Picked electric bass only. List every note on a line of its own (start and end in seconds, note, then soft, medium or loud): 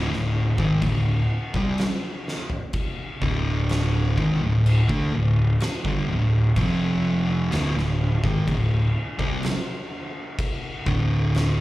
0.10 0.55 D1 medium
0.58 0.81 G#1 medium
0.82 1.27 D1 medium
1.54 1.77 C2 loud
3.22 4.14 D1 loud
4.18 4.40 G#1 loud
4.41 4.86 D1 medium
4.89 5.12 D2 medium
5.13 5.58 D1 medium
5.85 6.08 G1 loud
6.09 6.54 D1 medium
6.56 7.49 F1 medium
7.52 7.75 D1 medium
7.77 8.22 D1 medium
8.24 8.47 G#1 loud
8.48 8.93 D1 medium
9.19 9.42 C2 loud
10.86 11.61 D1 medium